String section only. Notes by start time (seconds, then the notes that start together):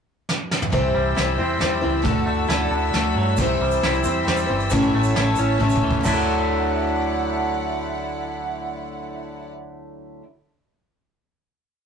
0.71 C5 G5 E6
2.07 D5 F#5
3.40 C5 G5
4.72 C#5 A5
6.03 E4 D5 F#5